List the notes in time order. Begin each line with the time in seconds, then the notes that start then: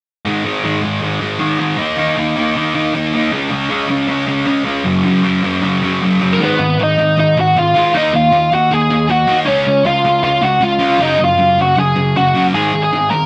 0.25 G#2 D#3 G#3
0.44 G#2 D#3 G#3
0.64 G#2 D#3 G#3
0.82 G#2 D#3 G#3
1.01 G#2 D#3 G#3
1.20 G#2 D#3 G#3
1.39 G#2 D#3 G#3
1.59 G#2 D#3 G#3
1.77 D#3 A#3 D#4
1.97 D#3 A#3 D#4
2.17 D#3 A#3 D#4
2.37 D#3 A#3 D#4
2.56 D#3 A#3 D#4
2.74 D#3 A#3 D#4
2.94 D#3 A#3 D#4
3.14 D#3 A#3 D#4
3.31 C#3 G#3 C#4
3.49 C#3 G#3 C#4
3.69 C#3 G#3 C#4
3.89 C#3 G#3 C#4
4.08 C#3 G#3 C#4
4.27 C#3 G#3 C#4
4.46 C#3 G#3 C#4
4.64 C#3 G#3 C#4
4.84 F#2 C#3 F#3
5.04 F#2 C#3 F#3
5.23 F#2 C#3 F#3
5.44 F#2 C#3 F#3
5.62 F#2 C#3 F#3
5.82 F#2 C#3 F#3
6.02 F#2 C#3 F#3
6.21 F#2 C#3 F#3
6.33 A#4
6.39 G#2 D#3 G#3
6.43 B3 B4
6.59 G#2 D#3
6.79 G#2 D#3 D#4 D#5
6.98 G#2 D#3
7.17 G#2 D#3 D#4 D#5
7.37 G#2 D#3 F#4 F#5
7.56 G#2 D#3 F4 F5
7.75 G#2 D#3 G#3
7.94 D#3 A#3 D#4 D#5
8.13 D#3 A#3 F4 F5
8.32 D#3 A#3
8.52 D#3 A#3 F#4 F#5
8.71 D#3 A#3 G#4 G#5
8.90 D#3 A#3
9.09 D#3 A#3 F#4 F#5
9.27 D#3 A#3 D#4
9.46 C#3 G#3 C#4 C#5
9.66 C#3 G#3
9.85 C#3 G#3 F4 F5
10.04 C#3 G#3
10.23 C#3 G#3 F4 F5
10.41 C#3 G#3 F#4 F#5
10.61 C#3 G#3 F4 F5
10.79 C#3 G#3 C#4
10.99 F#2 C#3 F#3 D#4 D#5
11.19 F#2 C#3
11.24 F4 F5
11.39 F#2 C#3
11.59 F#2 C#3 F#4 F#5
11.77 F#2 C#3 G#4 G#5
11.96 F#2 C#3
12.17 F#2 C#3 F#4 F#5
12.35 F#2 C#3 F#3
12.54 G#2 D#3 G#3 G#4 G#5
12.73 G#2 D#3
12.83 G#4 G#5
12.93 G#2 D#3
13.10 G#2 D#3 A#4 A#5